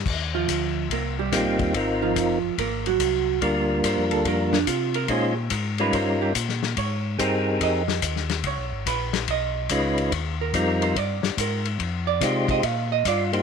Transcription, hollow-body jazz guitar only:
X:1
M:4/4
L:1/8
Q:"Swing" 1/4=143
K:Eb
V:1 name="Hollow-body jazz guitar"
z [F,F]3 [B,B] [G,G]3 | z [F,F]3 [B,B] [_G,_G]3 | z2 c =A B D F B | A G B _c =c G z2 |
_d2 c2 e3 z | _d2 _c2 e3 z | z B2 c d c B z | z d2 e f e d z |]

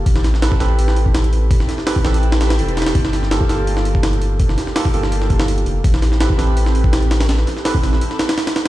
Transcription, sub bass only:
X:1
M:4/4
L:1/8
Q:1/4=166
K:Aphr
V:1 name="Sub bass" clef=bass
A,,,2 z A,,,4- A,,,- | A,,, z2 A,,,3 E,,,2 | G,,,2 z G,,,4- G,,,- | G,,, z2 G,,,4 F,,, |
A,,,2 z A,,,4- A,,,- | A,,, z2 A,,, z4 |]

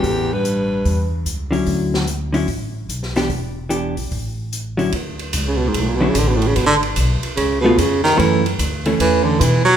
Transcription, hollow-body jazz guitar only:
X:1
M:4/4
L:1/8
Q:"Swing" 1/4=147
K:D
V:1 name="Hollow-body jazz guitar"
z6 z [D,F,CE]- | [D,F,CE]2 z [D,F,CE] z3 [E,B,DG] | z2 [E,B,DG] z4 [D,F,CE] | z4 z [D,F,CE] z2 |
z4 z [A,B,^E] z2 | [E,A,C] z2 [E,A,C]3 z2 |]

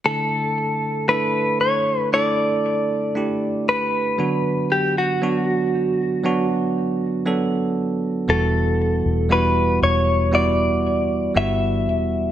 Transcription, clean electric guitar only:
X:1
M:4/4
L:1/16
Q:1/4=58
K:D
V:1 name="Clean electric guitar"
A4 B2 c2 d6 B2- | B2 G F6 z6 z | A4 B2 c2 d4 e4 |]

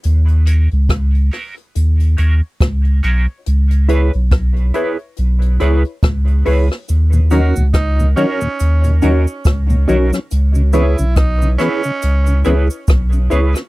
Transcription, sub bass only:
X:1
M:4/4
L:1/16
Q:"Swing 16ths" 1/4=70
K:Ebphr
V:1 name="Sub bass" clef=bass
E,,3 D,, D,,2 z2 E,,2 E,, z D,,2 C,, z | D,,3 C,,3 z2 C,,2 D,, z D,,2 D,, z | E,,3 D,, D,,2 z2 E,,2 E,, z D,,2 C,, z | D,,3 C,, C,,2 z2 D,,2 D,, z C,,2 D,, z |]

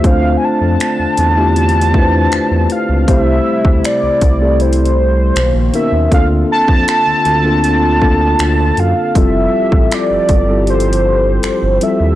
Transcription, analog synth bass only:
X:1
M:4/4
L:1/16
Q:1/4=79
K:F
V:1 name="Analog synth bass" clef=bass
D,,2 z F,, z E,, E,,6 E,, E,, z _D,, | C,,2 z D,, z C,, C,,6 =B,,, ^A,,, z ^D,, | D,,2 z F,, z D,, D,,6 D,,2 _G,, z | F,,,2 z A,,, z G,,, G,,,6 G,,, G,,, z _E,, |]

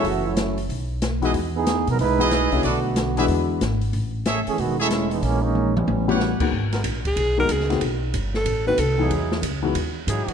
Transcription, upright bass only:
X:1
M:4/4
L:1/8
Q:"Swing" 1/4=186
K:Elyd
V:1 name="Upright bass" clef=bass
F,,,4 B,,,4 | E,,3 B,, B,,,3 ^B,,, | B,,,4 E,,2 G,,,2 | =A,,,3 z E,,,4 |
A,,,4 =A,,,3 z | G,,,2 A,,,2 B,,,2 C,,2 | B,,,2 =G,,,2 =A,,,2 =C,,2 | E,,2 C,,2 D,,2 G,, z |]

